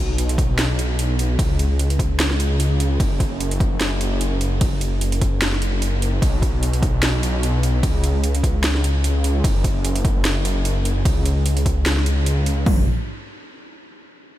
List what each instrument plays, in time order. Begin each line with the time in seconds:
Already playing: detuned saw bass B1
0.18 closed hi-hat
0.29 closed hi-hat
0.38 kick, closed hi-hat
0.59 snare, closed hi-hat, ride
0.79 closed hi-hat
0.99 closed hi-hat
1.19 closed hi-hat
1.39 detuned saw bass C#2, kick, closed hi-hat, ride
1.59 closed hi-hat
1.79 closed hi-hat
1.90 closed hi-hat
1.99 kick, closed hi-hat
2.20 snare, closed hi-hat, ride
2.31 snare
2.40 closed hi-hat
2.60 closed hi-hat
2.80 closed hi-hat
3.00 detuned saw bass F#1, kick, closed hi-hat, ride
3.20 kick, closed hi-hat
3.41 closed hi-hat
3.51 closed hi-hat
3.60 kick, closed hi-hat
3.81 snare, closed hi-hat, ride
4.01 closed hi-hat
4.21 closed hi-hat
4.41 closed hi-hat
4.61 kick, closed hi-hat, ride
4.81 closed hi-hat
5.01 closed hi-hat
5.12 closed hi-hat
5.22 kick, closed hi-hat
5.42 snare, closed hi-hat, ride
5.53 snare
5.62 closed hi-hat
5.82 closed hi-hat
6.02 closed hi-hat
6.22 detuned saw bass B1, kick, closed hi-hat, ride
6.42 kick, closed hi-hat
6.63 closed hi-hat
6.73 closed hi-hat
6.83 kick, closed hi-hat
7.03 snare, closed hi-hat, ride
7.23 closed hi-hat
7.43 closed hi-hat
7.63 closed hi-hat
7.83 detuned saw bass C#2, kick, closed hi-hat, ride
8.04 closed hi-hat
8.24 closed hi-hat
8.35 closed hi-hat
8.44 kick, closed hi-hat
8.64 snare, closed hi-hat, ride
8.75 snare
8.84 closed hi-hat
9.04 closed hi-hat
9.24 closed hi-hat
9.44 detuned saw bass F#1, kick, closed hi-hat, ride
9.64 kick, closed hi-hat
9.85 closed hi-hat
9.96 closed hi-hat
10.05 kick, closed hi-hat
10.25 snare, closed hi-hat, ride
10.45 closed hi-hat
10.65 closed hi-hat
10.85 closed hi-hat
11.05 detuned saw bass C#2, kick, closed hi-hat, ride
11.26 closed hi-hat
11.46 closed hi-hat
11.57 closed hi-hat
11.66 kick, closed hi-hat
11.86 snare, closed hi-hat, ride
11.97 snare
12.06 closed hi-hat
12.26 closed hi-hat
12.46 closed hi-hat
12.66 detuned saw bass F#1, kick, floor tom, open hi-hat